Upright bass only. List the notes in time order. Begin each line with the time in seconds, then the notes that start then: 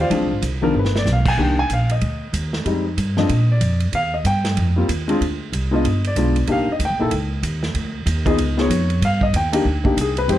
0.10 D2
0.21 C2
0.32 G#1
0.42 C2
0.74 G1
1.05 B1
1.38 C2
1.70 A#1
2.01 D2
2.33 D#2
2.65 F2
2.97 G2
3.29 A#2
3.60 F2
3.92 D#2
4.24 G2
4.56 F2
4.88 D#2
5.21 D2
5.52 C2
5.84 G1
6.16 B1
6.47 C2
6.67 muted upright bass stroke
6.79 D2
6.90 C2
7.00 A#1
7.11 C#2
7.43 D#2
7.74 D2
8.06 D#2
8.38 C#2
8.70 F2
9.01 G2
9.33 D#2
9.65 D2
9.97 C2
10.28 F2